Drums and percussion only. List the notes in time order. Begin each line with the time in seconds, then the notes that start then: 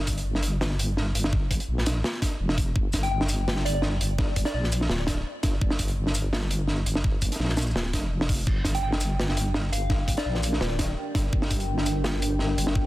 0.07 kick, closed hi-hat, shaker
0.17 closed hi-hat
0.35 snare
0.42 closed hi-hat
0.61 snare
0.79 closed hi-hat
0.97 snare
1.15 closed hi-hat
1.24 snare
1.33 kick
1.51 kick, closed hi-hat
1.60 closed hi-hat
1.78 snare
1.86 snare, closed hi-hat, shaker
2.04 snare
2.22 kick, snare, closed hi-hat
2.49 snare
2.58 kick, closed hi-hat
2.76 kick
2.93 kick, snare, closed hi-hat, shaker
3.03 closed hi-hat
3.21 snare
3.29 closed hi-hat, shaker
3.48 snare
3.56 snare
3.66 closed hi-hat
3.82 snare
4.01 closed hi-hat
4.18 kick, snare
4.36 kick, closed hi-hat
4.45 snare, closed hi-hat
4.64 snare
4.72 closed hi-hat, shaker
4.81 snare
4.90 snare
5.07 kick, snare, closed hi-hat
5.43 kick, snare, closed hi-hat
5.61 kick
5.70 snare
5.79 kick, closed hi-hat, shaker
5.88 closed hi-hat
6.07 snare
6.15 closed hi-hat, shaker
6.33 snare
6.51 closed hi-hat
6.67 snare
6.86 closed hi-hat
6.95 snare
7.04 kick
7.22 kick, closed hi-hat, shaker
7.32 snare, closed hi-hat
7.36 snare
7.40 snare
7.45 snare
7.49 snare
7.57 snare, closed hi-hat, shaker
7.62 shaker
7.66 shaker
7.71 shaker
7.76 snare
7.93 kick, snare, closed hi-hat
8.21 snare
8.29 kick, closed hi-hat
8.32 closed hi-hat
8.34 closed hi-hat
8.36 closed hi-hat
8.39 closed hi-hat
8.41 closed hi-hat
8.43 closed hi-hat
8.45 kick, closed hi-hat, crash
8.64 kick, snare, closed hi-hat, shaker
8.75 closed hi-hat
8.92 snare
9.01 closed hi-hat, shaker
9.20 snare
9.29 snare
9.37 closed hi-hat
9.54 snare
9.73 closed hi-hat
9.90 kick, snare
10.08 kick, closed hi-hat
10.17 snare, closed hi-hat
10.35 snare
10.43 closed hi-hat, shaker
10.53 snare
10.61 snare
10.79 kick, snare, closed hi-hat
11.15 kick, snare, closed hi-hat
11.33 kick
11.42 snare
11.51 kick, closed hi-hat, shaker
11.60 closed hi-hat
11.78 snare
11.86 closed hi-hat, shaker
12.04 snare
12.22 closed hi-hat
12.39 snare
12.58 closed hi-hat
12.67 snare
12.75 kick